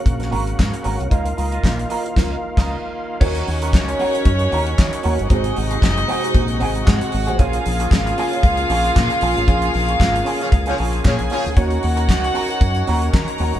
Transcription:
Already playing: C#3 A#3 F#4
0.06 A#1, kick, closed hi-hat
0.20 muted clean electric guitar stroke, snare, closed hi-hat
0.31 G#1 C#4 F#4 A#4, open hi-hat
0.45 muted clean electric guitar stroke, closed hi-hat
0.58 G#2, muted clean electric guitar stroke, kick, snare, clap
0.72 muted clean electric guitar stroke, closed hi-hat
0.83 G#1 C#4 F#4 A#4, open hi-hat
0.99 C2, muted clean electric guitar stroke, closed hi-hat
1.10 C#2 D#3 D#4 F4 A#4, kick, closed hi-hat
1.26 muted clean electric guitar stroke, closed hi-hat
1.37 C#2 D#4 F4 A#4, open hi-hat
1.51 D#4 F4 A#4, closed hi-hat
1.64 A#1, kick, snare, clap
1.78 muted clean electric guitar stroke, closed hi-hat
1.90 D#4 F4 A#4, open hi-hat
2.04 muted clean electric guitar stroke, closed hi-hat
2.16 C#2 D#4 F4 A#4, kick, snare, crash
2.57 C#2 D#4 F4 A#4, kick, snare, crash
3.21 D#2 D#3 C#4 F#4 A#4 C#5, kick, crash
3.35 closed hi-hat
3.47 D#2, muted clean electric guitar stroke, open hi-hat
3.62 C#4 F#4 A#4, closed hi-hat
3.73 C#2, muted clean electric guitar stroke, kick, snare, clap
3.88 muted clean electric guitar stroke, closed hi-hat
3.99 C#4 F#4 A#4, open hi-hat
4.14 C#4 F#4 A#4, closed hi-hat
4.25 F#2, kick, closed hi-hat
4.39 muted clean electric guitar stroke, closed hi-hat
4.52 D#2 C#4 F#4 A#4, open hi-hat
4.67 muted clean electric guitar stroke, closed hi-hat
4.78 D#3, muted clean electric guitar stroke, kick, snare, clap
4.93 muted clean electric guitar stroke, closed hi-hat
5.03 D#2 C#4 F#4 A#4, open hi-hat
5.19 G1, muted clean electric guitar stroke, closed hi-hat
5.30 G#1 C3 G#3 C4 D#4 F#4 G#4 D#5, kick, closed hi-hat
5.44 closed hi-hat
5.56 G#1, muted clean electric guitar stroke, open hi-hat
5.71 C4 F#4 G#4, closed hi-hat
5.82 F#1, muted clean electric guitar stroke, kick, snare, clap
5.97 muted clean electric guitar stroke, closed hi-hat
6.08 C4 F#4 G#4, open hi-hat
6.22 C4 F#4 G#4, closed hi-hat
6.35 A#1, kick, closed hi-hat
6.48 muted clean electric guitar stroke, closed hi-hat
6.60 G#1 C4 F#4 G#4, open hi-hat
6.75 muted clean electric guitar stroke, closed hi-hat
6.86 G#2 C4 F#4 G#4 F#5, kick, snare, clap
7.01 muted clean electric guitar stroke, closed hi-hat
7.12 G#1, muted clean electric guitar stroke, open hi-hat
7.27 A1 C4 F#4 G#4, closed hi-hat
7.38 A#1 C#3 A#3 C#4 F4 G#4 F5, kick, closed hi-hat
7.53 closed hi-hat
7.65 A#1, muted clean electric guitar stroke, open hi-hat
7.80 C#4 F4 G#4, closed hi-hat
7.91 G#1, muted clean electric guitar stroke, kick, snare, clap
8.06 muted clean electric guitar stroke, closed hi-hat
8.18 C#4 F4 G#4, open hi-hat
8.32 C#4 F4 G#4, closed hi-hat
8.43 C#2, muted clean electric guitar stroke, kick, closed hi-hat
8.57 muted clean electric guitar stroke, closed hi-hat
8.70 A#1 C#4 F4 G#4, open hi-hat
8.84 C#4 F4 G#4, closed hi-hat
8.95 A#2, muted clean electric guitar stroke, kick, snare, clap
9.10 muted clean electric guitar stroke, closed hi-hat
9.21 A#1 C#4 F4 G#4, open hi-hat
9.37 A1, muted clean electric guitar stroke, closed hi-hat
9.47 A#1 C#4 F4 G#4, kick, closed hi-hat
9.62 closed hi-hat
9.73 A#1, muted clean electric guitar stroke, open hi-hat
9.88 C#4 F4 G#4, closed hi-hat
9.99 G#1, muted clean electric guitar stroke, kick, snare, clap
10.14 muted clean electric guitar stroke, closed hi-hat
10.25 C#4 F4 G#4, open hi-hat
10.40 F3 C#4 F4 G#4, closed hi-hat
10.52 C#2, muted clean electric guitar stroke, kick, closed hi-hat
10.66 F3 C#4 F4 G#4, closed hi-hat
10.78 A#1 C#4 F4 G#4, open hi-hat
10.93 muted clean electric guitar stroke, closed hi-hat
11.04 A#2 F3 C#4 G#4 G#5, muted clean electric guitar stroke, kick, snare, clap
11.19 A#1, muted clean electric guitar stroke, closed hi-hat
11.30 F3 C#4 F4 G#4, open hi-hat
11.46 D2, muted clean electric guitar stroke, closed hi-hat
11.57 D#2 D#3 C#4 F#4 A#4 F#5, kick, closed hi-hat
11.71 closed hi-hat
11.83 D#2, muted clean electric guitar stroke, open hi-hat
11.97 C#4 F#4 A#4, closed hi-hat
12.09 C#2, muted clean electric guitar stroke, kick, snare, clap
12.23 muted clean electric guitar stroke, closed hi-hat
12.34 C#4 F#4 A#4, open hi-hat
12.49 C#4 F#4 A#4, closed hi-hat
12.61 F#2, kick, closed hi-hat
12.75 muted clean electric guitar stroke, closed hi-hat
12.87 D#2 C#4 F#4 A#4, open hi-hat
13.02 muted clean electric guitar stroke, closed hi-hat
13.13 D#3 A#4 A#5, muted clean electric guitar stroke, kick, snare, clap
13.28 muted clean electric guitar stroke, closed hi-hat
13.38 D#2 C#4 F#4 A#4, open hi-hat
13.54 G1, muted clean electric guitar stroke, closed hi-hat

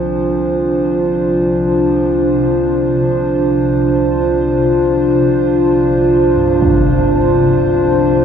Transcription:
Already playing: C2 C3 F3 D4 F4 C5
6.36 G2
6.62 impact

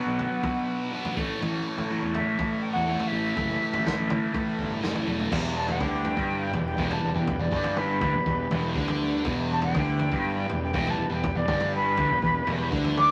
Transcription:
Already playing: B2 F#3 B3 D4 F#4 B4 E5 F#5
0.06 B1
0.18 F#3 B3, floor tom
0.42 B2 F#3 B3, kick, floor tom
0.92 B2 F#3 B3
1.05 floor tom
1.16 A1 A2 E3 A3 C#4 E4 A4 C#5, kick
1.40 A1 A2 E3 A3, floor tom
1.65 E3 A3
1.78 A2, floor tom
1.90 A2 E3 A3
2.03 E2
2.13 E3 A3 E5, floor tom
2.39 A2 E3 A3, kick, floor tom
2.62 G5
2.73 E2 F#5
2.86 A2 E3 A3
3.00 floor tom
3.08 E5
3.12 A1 E3 A3 B4
3.36 F#1 A2 E3 A3, kick, floor tom
3.61 E3 A3
3.73 A1, floor tom
3.84 A2 E3 A3, kick, snare, mid tom
3.98 A1
4.08 E3 A3, floor tom, mid tom
4.33 A2 E3 A3, kick, floor tom
4.59 G1, kick
4.81 F#1 A2 E3 A3, snare
4.95 floor tom
5.06 E1 E3 A3, high tom
5.20 floor tom
5.30 E1 E2 G3 B3 E4 G4 B4, kick, floor tom, crash
5.56 A5
5.68 G5, floor tom
5.80 D2 D3, kick, mid tom
6.05 floor tom
6.17 G1 G2, kick
6.53 E1 E2, floor tom
6.67 G5
6.77 E1 E2, kick
6.91 A5, floor tom
7.02 E1 E2
7.14 E1 E2 G5
7.27 kick, floor tom
7.39 E1 E2 D5
7.51 G1 G2, kick
7.64 floor tom
7.77 B4, mid tom
8.01 D2 D3, kick, floor tom
8.13 E1 E2
8.26 E1 E2, kick
8.51 E1 E2, floor tom
8.75 D2 D3, kick
8.88 floor tom
9.25 E1 E2, kick, floor tom
9.52 A5
9.62 G5, floor tom
9.74 D2 D3, kick, mid tom
9.99 floor tom
10.12 G1 G2, kick
10.48 E1 E2, floor tom
10.64 G5
10.73 E1 E2, kick
10.87 A5, floor tom
10.97 E1 E2
11.09 E1 E2
11.14 G5
11.24 kick, floor tom
11.35 E1 E2 D5
11.48 G1 G2, kick, mid tom
11.61 floor tom
11.75 B4
11.97 D2 D3, kick, floor tom
12.09 E1 E2
12.22 E1 E2, kick
12.46 E1 E2, floor tom
12.70 D2 D3, kick
12.84 floor tom
12.97 D6, mid tom

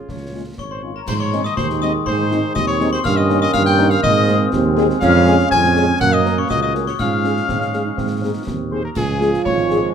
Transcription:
Already playing: C#4 F4
0.09 C#2 C#5, concert bass drum, snare
0.34 G#3 C#4 F4
0.58 G#1 C#5 C#6, concert bass drum, snare
0.71 C5 C6
0.83 G#3 C#4 F4
0.94 A#4 A#5
1.08 G#2 C5 C6, concert bass drum, snare, crash
1.20 C#5 C#6
1.32 G#3 C4 D#4, snare
1.44 D#5 D#6, snare
1.57 D#2 D#4 C5 C6, concert bass drum, snare
1.70 snare
1.82 G#3 C4 D#4 D#5 D#6, snare
2.06 G#2 C5 C6, concert bass drum
2.31 G#3 C4 D#4, snare
2.55 D#2 C4 D#5 D#6, concert bass drum, snare
2.67 C#5 C#6
2.80 G#3 C4 D#4, snare
2.92 C5 C6, snare
3.04 G2 D#3 A#3 C#4 F5 F6, concert bass drum, snare, crash
3.17 D#5 D#6
3.30 A#3 C#4 D#4, snare
3.41 D#5 D#6, snare
3.53 G2 F5 F6, concert bass drum, snare
3.66 G5 G6, snare
3.79 A#3 C#4 D#4, snare
3.90 F5 F6
4.02 G#2 G#3 C4 D#5 D#6, concert bass drum
4.28 G#3 C4 G#4, snare
4.52 D#2 C4, concert bass drum, snare
4.77 G#3 C4 G#4, snare
4.90 snare
5.01 F2 C#4 F5 F6, concert bass drum, snare, crash
5.27 G#3 C#4 G#4, snare
5.39 snare
5.50 F2 C4 G#5 G#6, concert bass drum, snare
5.64 snare
5.76 G#3 C#4 G#4, snare
6.00 F#2 A#3 F#5 F#6, concert bass drum
6.12 D#5 D#6
6.25 C#4 A#4, snare
6.37 C#5 C#6
6.49 C#2 F#4 D#5 D#6, concert bass drum, snare
6.62 D#5 D#6
6.74 C#4 A#4, snare
6.87 C#5 C#6, snare
6.99 G#2 G#3 C#4 F4 F5 F6, concert bass drum, snare, crash
7.24 C#4 G#4, snare
7.36 snare
7.48 G#2 C4, concert bass drum, snare
7.60 C#4, snare
7.73 C#4 G#4, snare
7.85 D#4
7.97 G#2 C4, concert bass drum, snare
8.22 C4 D#4 G#4
8.46 D#2 C4, concert bass drum, snare
8.71 C4 D#4 G#4 C5 C6
8.84 A#4 A#5
8.95 C#2 F3 G#3 F4 G#4 G#5, concert bass drum, snare, crash
9.21 G#3 F4 G#4, snare
9.34 snare
9.45 G#1 C#5 C#6, concert bass drum
9.70 G#3 F4 G#4, snare

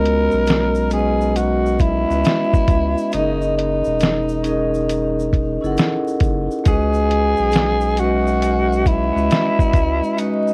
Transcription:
Already playing: C#2 G#3 B3 C#4 F#4 A#4 D#5 B5
0.06 closed hi-hat
0.31 B1, shaker
0.47 snare, closed hi-hat, shaker
0.75 shaker
0.90 G#3 C#4 F#4 G#4, closed hi-hat, shaker
0.95 B4 D#5
1.21 shaker
1.36 F#4, closed hi-hat, shaker
1.66 shaker
1.79 E4, kick, closed hi-hat, shaker
2.09 C#2 G#3 C#4 F#4 B4, shaker
2.14 D#5
2.21 E5, shaker
2.25 snare, closed hi-hat
2.54 kick, shaker
2.68 C#2, kick, closed hi-hat, shaker
2.98 shaker
3.12 F#1 C#4 D#4 G#4, closed hi-hat, shaker
3.17 A#4 D#5
3.42 shaker
3.58 D#4, closed hi-hat
3.84 E1, shaker
4.00 snare, closed hi-hat, shaker
4.29 shaker
4.43 C#4 D#4 G#4, closed hi-hat, shaker
4.47 A#4 D#5
4.74 shaker
4.89 closed hi-hat, shaker
5.19 shaker
5.33 kick, closed hi-hat, shaker
5.61 F#1 C#4 E4 G#4 A4, shaker
5.66 F#5
5.72 A#4
5.77 snare, closed hi-hat, shaker
6.08 shaker
6.20 F#1, kick, closed hi-hat, shaker
6.51 shaker
6.64 C#2 G#3 C#4 F#4 G#4, kick, closed hi-hat, shaker
6.68 B4 D#5
6.94 shaker
7.11 closed hi-hat
7.37 B1, shaker
7.52 closed hi-hat, shaker
7.56 snare
7.81 shaker
7.97 G#3 C#4 F#4, closed hi-hat, shaker
8.01 F#4 B4 D#5
8.27 shaker
8.42 closed hi-hat, shaker
8.72 shaker
8.86 E4, kick, closed hi-hat, shaker
9.13 C#2 G#3 C#4 F#4 B4
9.17 D#5, shaker
9.31 snare, closed hi-hat, shaker
9.59 kick, shaker
9.73 C#2, kick, closed hi-hat, shaker
10.04 shaker
10.17 G#3 C#4 D#4 F#4 B4, closed hi-hat, shaker
10.23 D#5
10.48 shaker

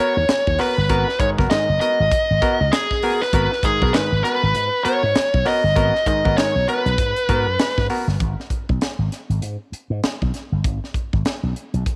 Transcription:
Already playing: B3
0.00 F#4 A#4 C#5
0.17 D#2
0.29 muted slap bass stroke, snare, closed hi-hat
0.47 D#2, kick
0.59 B3 F#4 A#4 B4, snare, open hi-hat
0.78 G1
0.89 G#1 B3 F#4 A#4, kick, closed hi-hat
1.09 snare
1.20 G#2 D#3 C#5, kick, closed hi-hat
1.38 F#1 B3 F#4 A#4, kick, snare
1.50 G#2 D#3 D#5, muted slap bass stroke, snare, closed hi-hat
1.69 F#1
1.80 B3 F#4 A#4 D#5, closed hi-hat
2.00 G#1 F#4 A#4
2.11 kick, closed hi-hat
2.30 G#1
2.42 B3 F#4 A#4, kick, closed hi-hat
2.61 C#2
2.72 G#4, snare, closed hi-hat
2.91 kick, snare
3.02 B3 F#4 A#4, open hi-hat
3.21 B4, snare
3.33 G#1 B3 F#4 A#4, kick, closed hi-hat
3.52 snare
3.63 G#2 D#3 G#4, kick, closed hi-hat
3.82 B1 B3 F#4 A#4, kick
3.93 G#2 D#3 B4, snare, closed hi-hat
4.12 G#1
4.24 B3 F#4 A#4 B4, snare, closed hi-hat
4.43 G#1 F#4 A#4
4.54 G#2, closed hi-hat
4.84 B3 F#4 A#4 C#5, muted slap bass stroke, closed hi-hat
5.03 G#2
5.15 muted slap bass stroke, snare, closed hi-hat
5.34 B1, kick
5.45 B3 F#4 A#4 D#5, snare, open hi-hat
5.64 G1
5.76 G#1 B3 F#4 A#4, kick, closed hi-hat
5.95 snare
6.06 G#2 D#3 D#5, kick, closed hi-hat
6.25 G#1 B3 F#4 A#4, kick
6.37 G#2 D#3 C#5, snare, closed hi-hat
6.56 B1
6.68 B3 F#4 A#4 B4, closed hi-hat
6.86 B1 F#4 A#4, closed hi-hat
6.98 G#2, kick, closed hi-hat
7.16 closed hi-hat
7.29 G#2 B3 F#4 A#4, kick, closed hi-hat
7.47 F#2
7.59 snare, closed hi-hat
7.78 G#2, kick, snare
7.90 B3 F#4 A#4, open hi-hat
8.08 G1, snare
8.20 G#1, kick, closed hi-hat
8.40 snare
8.50 kick, closed hi-hat
8.69 B1, kick
8.81 snare, closed hi-hat
8.99 G#1
9.12 snare, closed hi-hat
9.30 G#1, closed hi-hat
9.42 G#2, closed hi-hat
9.72 muted slap bass stroke, closed hi-hat
9.90 G#2
10.03 muted slap bass stroke, snare, closed hi-hat
10.22 B1, kick
10.34 snare, closed hi-hat
10.52 G1
10.64 G#1, kick, closed hi-hat
10.84 snare
10.94 kick, closed hi-hat
11.13 G#1, kick
11.25 snare, closed hi-hat
11.43 B1
11.56 closed hi-hat
11.74 B1, closed hi-hat
11.86 kick, closed hi-hat

